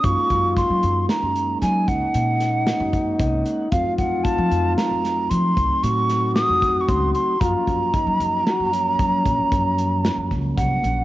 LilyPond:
<<
  \new Staff \with { instrumentName = "Flute" } { \time 7/4 \key f \phrygian \tempo 4 = 114 des'''4 c'''4 bes''4 aes''8 ges''2. r8 | f''8 ges''8 a''4 bes''4 c'''4 des'''4 ees'''8.~ ees'''32 des'''32 c'''8 c'''8 | bes''1. ges''4 | }
  \new Staff \with { instrumentName = "Trombone" } { \time 7/4 \key f \phrygian f'2~ f'8 r8 ees'1 | f'2.~ f'8 r8 ges'2. | f'4 ees'4 ges'8 des'1 r8 | }
  \new Staff \with { instrumentName = "Tonewheel organ" } { \time 7/4 \key f \phrygian r1. ees''8 ges''8 | r1. r4 | r1. r4 | }
  \new Staff \with { instrumentName = "Tonewheel organ" } { \time 7/4 \key f \phrygian <aes bes des' ees'>1.~ <aes bes des' ees'>4 | <ges a c' ees'>1.~ <ges a c' ees'>4 | <f ges bes des'>1.~ <f ges bes des'>4 | }
  \new Staff \with { instrumentName = "Upright bass" } { \clef bass \time 7/4 \key f \phrygian ges,16 r16 ges,8. ges16 ges,8 r16 ges,8. ges8 des,16 r16 bes,4~ bes,16 ges,8. c,8 r8 | f,16 r16 f,8. f16 f,8 r16 f,8. f8 c,16 r16 a,4~ a,16 f,8. des,8 r8 | ges,16 r16 ges,8. ges16 ges,8 r16 ges,8. ges8 bes,,16 r16 ges,4~ ges,16 ges,16 des,8 c,8 bes,,8 | }
  \new DrumStaff \with { instrumentName = "Drums" } \drummode { \time 7/4 <hh bd>8 <hh bd>8 <hh bd sn>8 hh8 <hh sn>8 hh8 <hh sn>8 <hh bd>8 hh8 <hh sn>8 <hh sn>8 <hh bd>8 <hh bd>8 hh8 | <hh bd>8 <hh bd>8 <hh bd>8 hh8 <hh sn>8 <hh sn>8 hh8 <hh bd>8 hh8 <hh sn>8 <hh sn>8 <hh bd>8 <hh bd>8 hh8 | <hh bd>8 <hh bd>8 <hh bd>8 hh8 <hh sn>8 hh8 <hh bd>8 <hh bd>8 <hh bd>8 hh8 <hh sn>8 <hh bd sn>8 <hh bd>8 hh8 | }
>>